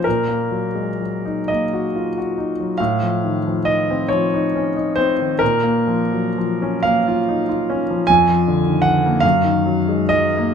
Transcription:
<<
  \new Staff \with { instrumentName = "Grand piano" } { \time 6/8 \key bes \minor \tempo 4. = 46 bes'4. ees''4. | f''4 ees''8 des''4 c''8 | bes'4. f''4. | \key ees \minor aes''4 ges''8 f''4 ees''8 | }
  \new Staff \with { instrumentName = "Grand piano" } { \clef bass \time 6/8 \key bes \minor bes,16 bes16 ges16 aes16 ges16 ees'16 bes16 ges'16 f'16 ges'16 ees'16 ges16 | a,16 f16 ees16 f16 ees16 c'16 f16 ees'16 des'16 ees'16 c'16 ees16 | bes,16 bes16 f16 ges16 f16 des'16 bes16 f'16 ees'16 f'16 des'16 f16 | \key ees \minor f,16 f16 d16 ees16 d16 bes16 ges,16 ees16 ges16 aes16 ges16 bes16 | }
>>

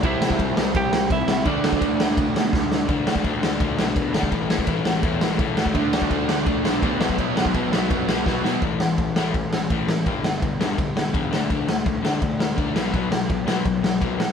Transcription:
<<
  \new Staff \with { instrumentName = "Lead electric guitar" } { \time 4/4 \key d \major \tempo 4 = 167 <e' e''>4. r8 <g' g''>4 <e' e''>4 | <d' d''>2. r4 | r1 | r1 |
r1 | r1 | r1 | r1 |
r1 | r1 | }
  \new Staff \with { instrumentName = "Overdriven electric guitar" } { \clef bass \time 4/4 \key d \major <c g c'>1 | <d a d'>1 | r1 | r1 |
<d a d'>8 <d a d'>8 <d a d'>8 <d a d'>8 <d a d'>8 <d a d'>8 <d a d'>8 <b, fis b>8 | <b, fis b>8 <b, fis b>8 <b, fis b>8 <b, fis b>8 <b, fis b>8 <b, fis b>8 <b, fis b>8 <b, fis b>8 | r1 | r1 |
r1 | r1 | }
  \new Staff \with { instrumentName = "Overdriven electric guitar" } { \clef bass \time 4/4 \key d \major <c g c'>1 | <d a d'>1 | <d a d'>8 <d a d'>8 <d a d'>8 <d a d'>8 <d a d'>8 <d a d'>8 <d a d'>8 <d a d'>8 | <a, e a>8 <a, e a>8 <a, e a>8 <a, e a>8 <a, e a>8 <a, e a>8 <a, e a>8 <d a d'>8 |
<d a d'>8 <d a d'>8 <d a d'>8 <d a d'>8 <d a d'>8 <d a d'>8 <d a d'>8 <b, fis b>8 | <b, fis b>8 <b, fis b>8 <b, fis b>8 <b, fis b>8 <b, fis b>8 <b, fis b>8 <b, fis b>8 <b, fis b>8 | <a, e a>8 <a, e>8 <a, e>8 <a, e a>8 <a, e>8 <a, e>8 <a, e a>8 <a, e>8 | <g, d g>8 <g, d>8 <g, d>8 <g, d g>8 <g, d>8 <g, d>8 <g, d g>8 <d a d'>8 |
<d a d'>8 <d a>8 <d a>8 <d a d'>8 <d a>8 <d a>8 <d a d'>8 <b, fis b>8 | <b, fis b>8 <b, fis>8 <b, fis>8 <b, fis b>8 <b, fis>8 <b, fis>8 <b, fis b>8 <b, fis>8 | }
  \new Staff \with { instrumentName = "Picked electric bass" } { \clef bass \time 4/4 \key d \major c,8 c,8 c,8 c,8 c,8 c,8 c,8 c,8 | d,8 d,8 d,4 d,8 b,8 d,4 | d,4 d,8 d,8 d,8 b,,8 b,8 g,,8 | a,,8 a,,8 a,,8 a,,8 e,8 a,,8 cis,8 d,8 |
d,4 d,8 d,8 d,8 b,,8 b,8 b,,8 | b,,8 b,,8 b,,8 b,,8 fis,8 b,,8 b,,8 b,8 | a,,8 a,,8 a,,8 a,,8 a,,8 a,,8 a,,8 a,,8 | g,,8 g,,8 g,,8 g,,8 g,,8 g,,8 e,8 d,8 |
d,8 d,8 d,8 d,8 d,8 d,8 d,8 b,,8 | b,,8 b,,8 b,,8 b,,8 b,,8 b,,8 b,,8 b,,8 | }
  \new DrumStaff \with { instrumentName = "Drums" } \drummode { \time 4/4 <bd cymr>8 sn16 bd16 <bd cymr>8 sn8 <bd cymr>8 sn8 <bd cymr>8 sn8 | <bd cymr>8 sn16 bd16 <bd cymr>8 sn8 <bd cymr>8 sn8 <bd sn>8 sn8 | <bd cymr>8 sn16 bd16 <bd cymr>8 sn8 <bd cymr>8 sn8 <bd cymr>8 sn16 bd16 | <bd cymr>8 sn16 bd16 <bd cymr>8 sn8 <bd cymr>8 sn8 <bd cymr>8 sn16 bd16 |
<bd cymr>8 sn16 bd16 <bd cymr>8 sn8 <bd cymr>8 sn8 <bd cymr>8 sn16 bd16 | <bd cymr>8 sn16 bd16 <bd cymr>8 sn8 <bd cymr>8 sn8 <bd sn>8 sn8 | <bd cymr>8 sn8 <bd cymr>8 sn8 <bd cymr>8 sn8 <bd cymr>8 sn8 | <bd cymr>8 sn8 <bd cymr>8 sn8 <bd cymr>8 sn8 <bd cymr>8 sn8 |
<bd cymr>8 sn8 <bd cymr>8 sn8 <bd cymr>8 sn8 <bd cymr>8 sn8 | <bd cymr>8 sn8 <bd cymr>8 sn8 <bd cymr>8 sn8 <bd cymr>8 sn8 | }
>>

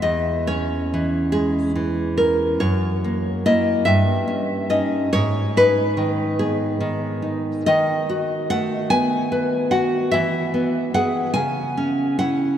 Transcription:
\new Staff \with { instrumentName = "Nylon-string guitar" } { \time 6/8 \key gis \minor \tempo 4. = 48 << { dis''8 cis''4 gis'4 ais'8 | cis''4 dis''8 e''4 dis''8 | cis''8 b'4 gis'4 r8 | \key b \mixolydian dis''4 fis''8 gis''4 fis''8 |
e''4 fis''8 gis''4 fis''8 | } \\ { e,8 cis'8 e8 gis8 e8 cis'8 | fis,8 ais8 <ais e'>8 g,8 cis'8 <cis' dis'>8 | gis,8 dis'8 dis8 b8 dis8 dis'8 | dis8 fis'8 a8 b8 b'8 fis'8 |
e8 b8 <b gis'>8 cis8 cis'8 <cis' e'>8 | } >> }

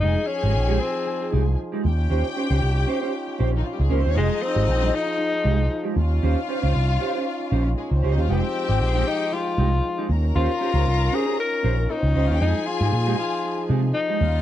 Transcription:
<<
  \new Staff \with { instrumentName = "String section" } { \time 4/4 \key f \minor \tempo 4 = 116 <aes' aes''>2. r8 <g' g''>8~ | <g' g''>2~ \tuplet 3/2 { <g' g''>4 r16 <ees ees'>16 <f f'>16 <g g'>16 <aes aes'>16 <bes bes'>16 <c' c''>16 <des' des''>16 } | <ees' ees''>2. r8 <f' f''>8~ | <f' f''>2. \tuplet 3/2 { <aes aes'>16 <bes bes'>16 <c' c''>16 <des' des''>16 <ees' ees''>16 <f' f''>16 } |
<g' g''>2. r8 <bes' bes''>8~ | <bes' bes''>2. \tuplet 3/2 { <bes bes'>16 <c' c''>16 <des' des''>16 <ees' ees''>16 <f' f''>16 <g' g''>16 } | <aes' aes''>2. r8 <f' f''>8 | }
  \new Staff \with { instrumentName = "Clean electric guitar" } { \time 4/4 \key f \minor <aes ees' g'>16 r8 <aes ees' g'>16 r16 <aes ees' g'>16 r4 <aes ees' g'>16 r8 <aes ees' g'>16 r8 | <des' g' c''>16 r16 <des' g' c''>16 <des' g' c''>16 r8 <des' g' c''>16 <des' g' c''>16 r8 <des' g' c''>16 r8. <des' g' c''>16 <des' g' c''>16 | <aes ees' g'>16 r8 <aes ees' g'>16 r16 <aes ees' g'>8 r8. <aes ees' g'>16 r8 <aes ees' g'>16 r8 | <des' g' c''>16 r16 <des' g' c''>16 <des' g' c''>16 r8 <des' g' c''>16 <des' g' c''>16 r8 <des' g' c''>16 r8. <des' g' c''>16 <des' g' c''>16 |
<aes ees' g'>16 r8 <aes ees' g'>16 r16 <aes ees' g'>16 r4 <aes ees' g'>16 r8 <aes ees' g'>16 r8 | <des' g' c''>16 r16 <des' g' c''>16 <des' g' c''>16 r8 <des' g' c''>16 <des' g' c''>16 r8 <des' g' c''>16 r8. <des' g' c''>16 <des' g' c''>16 | <aes ees' g'>16 r8 <aes ees' g'>16 r16 <aes ees' g'>16 r4 <aes ees' g'>16 r8 <aes ees' g'>16 r8 | }
  \new Staff \with { instrumentName = "Tenor saxophone" } { \time 4/4 \key f \minor ees'8 des'4 c'4 r4. | r1 | aes8 c'4 ees'2 r8 | r1 |
c'4. ees'8 f'4. r8 | f'4. aes'8 bes'4 ees'4 | ees'8 f'4 f'4 r8 ees'4 | }
  \new Staff \with { instrumentName = "French horn section" } { \time 4/4 \key f \minor << { <f ees' aes'>2.~ <f ees' aes'>8 des'8~ | des'1 | <f aes'>2.~ <f aes'>8 des'8~ | des'1 |
<f aes>2.~ <f aes>8 <des' f'>8~ | <des' f'>1 | <f ees' aes'>2.~ <f ees' aes'>8 g8 | } \\ { f'1~ | f'1~ | f'1~ | f'1~ |
f'2.~ f'8 r8 | r1 | r2. r8 des'8 | } >> }
  \new Staff \with { instrumentName = "Picked electric bass" } { \clef bass \time 4/4 \key f \minor f,,16 r8 aes,,16 bes,,8 r4 c,8 r8 ees,8 | ees,16 r8 des,16 c,8 r4 bes,,8 r16 des,16 des,16 ees,16 | f,,16 r8 aes,,16 bes,,8 r4 c,8 r8 ees,8 | ees,16 r8 des,16 c,8 r4 bes,,8 r16 des,16 des,16 ees,16 |
f,,16 r8 aes,,16 bes,,8 r4 c,8 r8 ees,8 | ees,16 r8 des,16 c,8 r4 bes,,8 r16 des,16 des,16 ees,16 | f,16 r8 aes,16 bes,8 r4 c8 r8 ees,8 | }
>>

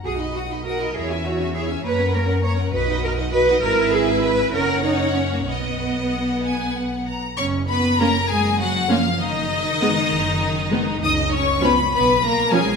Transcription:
<<
  \new Staff \with { instrumentName = "Violin section" } { \time 6/8 \key b \major \tempo 4. = 66 dis'''16 b''16 dis'''16 b''16 dis'''16 b''16 e''16 gis''16 e''16 gis''16 e''16 gis''16 | ais''16 fis''16 ais''16 fis''16 ais''16 fis''16 dis''16 fis''16 dis''16 fis''16 dis''16 fis''16 | e''4. fis''4. | fis''2~ fis''8. r16 |
\key fis \major cis'''8 b''8 ais''8 gis''8 fis''8 eis''8 | dis''2. | dis'''8 cis'''8 b''8 b''8 ais''8 gis''8 | }
  \new Staff \with { instrumentName = "Violin section" } { \time 6/8 \key b \major fis''16 dis''16 fis''16 dis''16 fis''16 dis''16 cis''16 e''16 cis''16 e''16 cis''16 e''16 | cis''16 ais'16 cis''16 ais'16 cis''16 ais'16 b'16 dis''16 b'16 dis''16 b'16 dis''16 | b'4. cis''4. | dis''4. gis''8 fis''8 ais''8 |
\key fis \major cis''8 b'8 ais'8 gis'8 fis'8 eis'8 | dis'2. | dis''8 cis''8 b'8 b'8 ais'8 gis'8 | }
  \new Staff \with { instrumentName = "Cello section" } { \time 6/8 \key b \major gis'8 fis'8 ais'8 gis'16 e'16 fis'8 gis'8 | b'8 ais'8 cis''8 b'8 ais'8 b'8 | ais'8 gis'8 b'8 ais'8 dis'8 cis'16 ais16 | b2~ b8 r8 |
\key fis \major cis'8 b8 ais8 gis8 fis8 eis8 | dis2. | dis'8 cis'8 b8 b8 ais8 gis8 | }
  \new Staff \with { instrumentName = "Viola section" } { \time 6/8 \key b \major fis'16 dis'16 fis'16 dis'16 fis'16 dis'16 e'16 cis'16 e'16 cis'16 e'16 cis'16 | ais16 cis'16 ais16 cis'16 ais16 cis'16 fis'16 dis'16 fis'16 dis'16 fis'16 dis'16 | e'4. cis'4. | b2~ b8. r16 |
\key fis \major r4 <ais cis'>16 r4 r16 <ais cis'>16 r16 | r4 <gis b>16 r4 r16 <gis b>16 r16 | r4 <eis cis'>16 r4 r16 <eis cis'>16 r16 | }
  \new Staff \with { instrumentName = "Double bass section" } { \clef bass \time 6/8 \key b \major b,,4. e,4. | fis,4. b,,4. | gis,,4. fis,,4. | b,,2~ b,,8 r8 |
\key fis \major fis,,4. fis,,4. | fis,,4. fis,,4. | cis,4. b,,4. | }
>>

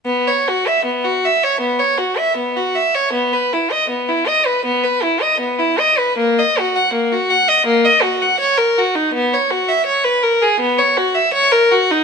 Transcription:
\new Staff \with { instrumentName = "Violin" } { \time 4/4 \key b \major \tempo 4 = 80 b16 cis''16 fis'16 e''16 b16 fis'16 e''16 cis''16 b16 cis''16 fis'16 e''16 b16 fis'16 e''16 cis''16 | b16 b'16 e'16 dis''16 b16 e'16 dis''16 b'16 b16 b'16 e'16 dis''16 b16 e'16 dis''16 b'16 | ais16 dis''16 fis'16 fis''16 ais16 fis'16 fis''16 dis''16 ais16 dis''16 fis'16 fis''16 cis''16 ais'16 fis'16 dis'16 | b16 cis''16 fis'16 e''16 cis''16 b'16 ais'16 gis'16 b16 cis''16 fis'16 e''16 cis''16 ais'16 fis'16 dis'16 | }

